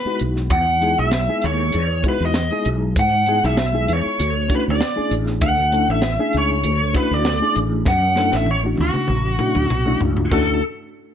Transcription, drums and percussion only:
0.19 closed hi-hat medium
0.36 snare soft
0.50 kick loud
0.50 closed hi-hat medium
0.82 closed hi-hat medium
1.11 snare medium
1.11 closed hi-hat medium
1.42 closed hi-hat medium
1.73 closed hi-hat medium
2.04 kick medium
2.04 closed hi-hat medium
2.34 snare loud
2.34 closed hi-hat medium
2.65 closed hi-hat medium
2.96 kick loud
2.96 closed hi-hat medium
3.26 closed hi-hat medium
3.44 snare soft
3.57 snare loud
3.57 closed hi-hat medium
3.88 closed hi-hat medium
4.19 closed hi-hat medium
4.50 kick medium
4.50 closed hi-hat medium
4.81 snare loud
4.81 closed hi-hat medium
5.11 closed hi-hat medium
5.26 snare soft
5.41 kick loud
5.41 closed hi-hat medium
5.72 closed hi-hat medium
6.02 snare loud
6.02 closed hi-hat medium
6.33 closed hi-hat medium
6.64 closed hi-hat medium
6.95 kick medium
6.95 closed hi-hat medium
7.25 snare loud
7.25 closed hi-hat medium
7.56 closed hi-hat medium
7.85 kick loud
7.85 snare medium
8.16 snare medium
8.32 snare medium
8.46 high tom medium
8.77 high tom medium
8.94 mid tom medium
9.08 mid tom medium
9.39 mid tom medium
9.55 mid tom medium
9.70 mid tom medium
10.01 floor tom medium
10.17 floor tom medium
10.31 kick loud
10.31 crash medium

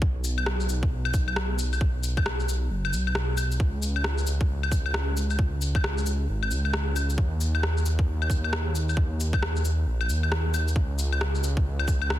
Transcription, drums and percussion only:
0.02 kick loud
0.24 cabasa medium
0.24 shaker medium
0.38 claves medium
0.46 cross-stick loud
0.60 shaker soft
0.69 cabasa medium
0.69 shaker medium
0.83 kick loud
1.05 claves medium
1.14 kick loud
1.14 cabasa medium
1.14 shaker medium
1.28 claves medium
1.36 cross-stick loud
1.59 cabasa medium
1.59 shaker medium
1.73 claves soft
1.73 shaker soft
1.81 kick loud
2.04 cabasa medium
2.04 shaker medium
2.17 kick loud
2.17 claves medium
2.26 cross-stick loud
2.40 shaker soft
2.49 cabasa medium
2.49 shaker medium
2.85 claves medium
2.93 cabasa medium
2.93 shaker medium
3.07 claves medium
3.15 cross-stick loud
3.37 cabasa medium
3.37 claves medium
3.37 shaker medium
3.52 cabasa soft
3.52 shaker soft
3.60 kick loud
3.83 cabasa medium
3.83 shaker medium
3.96 claves medium
4.04 cross-stick loud
4.18 shaker soft
4.27 cabasa medium
4.27 shaker medium
4.41 kick loud
4.63 claves medium
4.72 kick loud
4.72 cabasa medium
4.72 shaker medium
4.86 claves soft
4.94 cross-stick loud
5.17 cabasa medium
5.17 shaker medium
5.30 claves soft
5.30 shaker soft
5.39 kick loud
5.62 cabasa medium
5.62 shaker medium
5.75 kick loud
5.75 claves medium
5.84 cross-stick loud
5.98 shaker soft
6.06 cabasa medium
6.06 shaker medium
6.43 claves medium
6.51 cabasa medium
6.51 shaker medium
6.65 claves soft
6.74 cross-stick loud
6.96 cabasa medium
6.96 claves soft
6.96 shaker medium
7.10 cabasa soft
7.10 shaker soft
7.18 kick loud
7.41 cabasa medium
7.41 shaker medium
7.55 claves medium
7.63 cross-stick loud
7.77 shaker soft
7.86 cabasa medium
7.86 shaker medium
7.99 kick loud
8.22 claves medium
8.30 kick loud
8.30 cabasa medium
8.30 shaker medium
8.44 claves soft
8.53 cross-stick loud
8.75 cabasa medium
8.75 shaker medium
8.89 claves soft
8.89 shaker soft
8.97 kick loud
9.20 cabasa medium
9.20 shaker medium
9.33 kick loud
9.33 claves medium
9.43 cross-stick loud
9.56 shaker soft
9.65 cabasa medium
9.65 shaker medium
10.01 claves medium
10.10 cabasa medium
10.10 shaker medium
10.23 claves soft
10.32 cross-stick loud
10.54 cabasa medium
10.54 claves medium
10.54 shaker medium
10.68 cabasa soft
10.68 shaker soft
10.76 kick loud
10.99 cabasa medium
10.99 shaker medium
11.13 claves medium
11.21 cross-stick loud
11.35 shaker soft
11.44 cabasa medium
11.44 shaker medium
11.57 kick loud
11.79 claves medium
11.88 kick loud
11.88 cabasa medium
11.88 shaker medium
12.02 claves medium
12.10 cross-stick loud

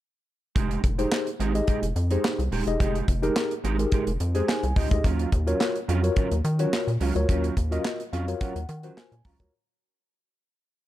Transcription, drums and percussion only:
0.56 kick loud
0.56 closed hi-hat medium
0.71 closed hi-hat soft
0.84 kick medium
0.84 closed hi-hat medium
0.99 closed hi-hat medium
1.12 snare loud
1.12 clap medium
1.27 closed hi-hat medium
1.40 closed hi-hat medium
1.55 closed hi-hat medium
1.67 kick medium
1.67 closed hi-hat medium
1.83 closed hi-hat medium
1.96 closed hi-hat medium
2.11 closed hi-hat medium
2.25 snare loud
2.25 clap medium
2.40 closed hi-hat soft
2.52 open hi-hat medium
2.67 closed hi-hat medium
2.80 kick loud
2.80 closed hi-hat medium
2.95 closed hi-hat soft
3.08 kick medium
3.08 closed hi-hat medium
3.23 closed hi-hat medium
3.36 snare loud
3.36 clap medium
3.51 closed hi-hat soft
3.65 closed hi-hat medium
3.79 closed hi-hat medium
3.92 kick loud
3.92 closed hi-hat medium
4.07 closed hi-hat medium
4.20 closed hi-hat medium
4.35 closed hi-hat medium
4.49 snare loud
4.49 clap medium
4.63 closed hi-hat soft
4.76 kick loud
4.76 open hi-hat medium
4.91 kick loud
4.91 closed hi-hat medium
5.04 kick loud
5.04 closed hi-hat medium
5.19 closed hi-hat soft
5.32 kick medium
5.32 closed hi-hat medium
5.47 closed hi-hat medium
5.61 snare loud
5.61 clap medium
5.76 closed hi-hat medium
5.89 closed hi-hat medium
6.04 closed hi-hat medium
6.16 kick loud
6.16 closed hi-hat medium
6.31 closed hi-hat medium
6.45 closed hi-hat medium
6.59 closed hi-hat medium
6.73 snare loud
6.73 clap medium
6.88 closed hi-hat soft
7.01 open hi-hat medium
7.16 closed hi-hat medium
7.29 kick loud
7.29 closed hi-hat medium
7.44 closed hi-hat soft
7.57 kick medium
7.57 closed hi-hat medium
7.72 closed hi-hat medium
7.85 snare loud
7.85 clap medium
8.00 closed hi-hat medium
8.13 closed hi-hat medium
8.28 closed hi-hat medium
8.41 kick loud
8.41 closed hi-hat medium
8.56 closed hi-hat medium
8.69 closed hi-hat medium
8.83 closed hi-hat medium
8.97 snare loud
8.97 clap medium
9.12 closed hi-hat soft
9.25 kick loud
9.25 open hi-hat medium
9.40 kick loud
9.40 closed hi-hat medium

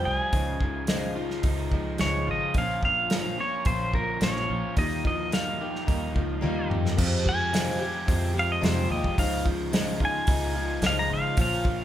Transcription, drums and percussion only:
0.33 kick medium
0.33 open hi-hat soft
0.60 kick medium
0.87 snare loud
0.87 open hi-hat soft
1.30 snare soft
1.43 kick loud
1.43 open hi-hat soft
1.72 kick medium
1.98 snare medium
1.98 open hi-hat soft
2.54 kick medium
2.54 open hi-hat soft
2.83 kick medium
3.10 snare loud
3.10 open hi-hat soft
3.65 kick loud
3.65 open hi-hat soft
3.94 kick medium
4.21 snare loud
4.21 open hi-hat soft
4.36 snare soft
4.77 kick medium
4.77 open hi-hat soft
5.05 kick medium
5.32 snare medium
5.32 open hi-hat soft
5.75 snare soft
5.88 kick medium
5.88 open hi-hat soft
6.16 kick medium
6.44 high tom soft
6.71 mid tom medium
6.86 snare medium
6.98 kick medium
6.98 crash loud
7.26 kick medium
7.54 snare loud
7.54 open hi-hat soft
8.08 kick medium
8.08 open hi-hat soft
8.63 snare loud
8.63 open hi-hat soft
9.04 kick medium
9.18 kick medium
9.18 open hi-hat medium
9.46 kick medium
9.73 snare loud
9.73 open hi-hat medium
10.00 kick medium
10.27 kick loud
10.27 open hi-hat medium
10.82 snare medium
10.82 open hi-hat medium
11.37 kick loud
11.37 open hi-hat medium
11.65 kick medium

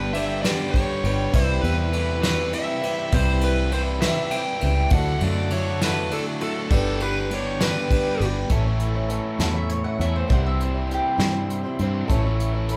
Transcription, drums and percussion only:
0.14 ride medium
0.44 snare loud
0.44 ride medium
0.74 kick medium
0.74 ride medium
1.04 ride medium
1.34 kick medium
1.34 crash medium
1.64 ride medium
1.93 ride medium
2.23 snare loud
2.23 ride medium
2.53 ride medium
2.83 ride medium
3.12 kick loud
3.12 ride medium
3.41 ride medium
3.72 ride medium
4.02 snare loud
4.02 ride loud
4.31 ride medium
4.61 ride medium
4.90 kick loud
4.90 ride medium
5.21 ride medium
5.50 ride medium
5.81 snare loud
5.81 ride loud
6.11 ride medium
6.41 ride medium
6.71 kick loud
6.71 ride medium
7.00 ride medium
7.31 ride medium
7.61 snare loud
7.61 ride loud
7.91 kick medium
7.91 ride medium
8.21 ride medium
8.50 kick medium
8.50 closed hi-hat medium
8.80 closed hi-hat medium
9.10 closed hi-hat medium
9.40 snare medium
9.40 closed hi-hat medium
9.70 closed hi-hat medium
10.01 closed hi-hat medium
10.30 kick medium
10.30 closed hi-hat medium
10.61 closed hi-hat medium
10.91 closed hi-hat medium
11.19 snare loud
11.19 closed hi-hat medium
11.50 closed hi-hat medium
11.79 closed hi-hat medium
12.10 kick medium
12.10 closed hi-hat medium
12.40 closed hi-hat medium
12.69 closed hi-hat medium

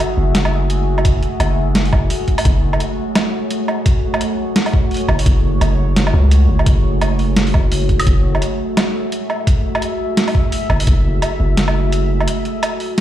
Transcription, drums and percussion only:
0.35 snare loud
0.35 closed hi-hat medium
0.45 low woodblock medium
0.70 closed hi-hat medium
0.98 low woodblock medium
1.05 kick loud
1.05 closed hi-hat medium
1.23 closed hi-hat soft
1.40 closed hi-hat medium
1.40 low woodblock medium
1.75 snare loud
1.75 closed hi-hat medium
1.85 open hi-hat soft
1.93 kick loud
1.93 low woodblock medium
2.10 open hi-hat medium
2.28 kick medium
2.28 closed hi-hat soft
2.38 open hi-hat medium
2.38 low woodblock medium
2.45 kick loud
2.45 closed hi-hat medium
2.73 low woodblock medium
2.80 closed hi-hat medium
3.15 snare loud
3.15 closed hi-hat medium
3.15 low woodblock medium
3.51 closed hi-hat medium
3.68 low woodblock medium
3.86 kick loud
3.86 closed hi-hat medium
4.14 low woodblock medium
4.21 closed hi-hat medium
4.56 snare loud
4.56 closed hi-hat medium
4.66 open hi-hat soft
4.66 low woodblock medium
4.73 kick loud
4.91 open hi-hat soft
4.94 open hi-hat soft
4.97 open hi-hat soft
5.09 kick medium
5.09 low woodblock medium
5.19 open hi-hat medium
5.26 kick loud
5.26 closed hi-hat medium
5.61 closed hi-hat medium
5.61 low woodblock medium
5.96 snare loud
5.96 closed hi-hat medium
6.07 low woodblock medium
6.31 closed hi-hat medium
6.59 low woodblock medium
6.66 kick loud
6.66 closed hi-hat medium
7.01 closed hi-hat medium
7.01 low woodblock medium
7.19 open hi-hat soft
7.36 snare loud
7.36 closed hi-hat medium
7.47 open hi-hat soft
7.54 kick loud
7.54 low woodblock soft
7.72 open hi-hat medium
7.89 kick medium
7.89 closed hi-hat soft
8.00 open hi-hat medium
8.00 low woodblock medium
8.07 kick loud
8.07 closed hi-hat medium
8.35 low woodblock medium
8.42 closed hi-hat medium
8.77 snare loud
8.77 closed hi-hat medium
8.77 low woodblock medium
9.12 closed hi-hat medium
9.30 low woodblock medium
9.47 kick loud
9.47 closed hi-hat medium
9.75 low woodblock medium
9.82 closed hi-hat medium
10.17 snare loud
10.17 closed hi-hat medium
10.28 open hi-hat soft
10.28 low woodblock medium
10.35 kick loud
10.52 open hi-hat medium
10.70 kick medium
10.70 low woodblock medium
10.80 open hi-hat medium
10.87 kick loud
10.87 closed hi-hat medium
11.22 closed hi-hat medium
11.22 low woodblock medium
11.57 snare loud
11.57 closed hi-hat medium
11.68 low woodblock medium
11.92 closed hi-hat medium
12.20 low woodblock medium
12.28 closed hi-hat medium
12.45 closed hi-hat soft
12.63 closed hi-hat medium
12.63 low woodblock medium
12.80 open hi-hat soft

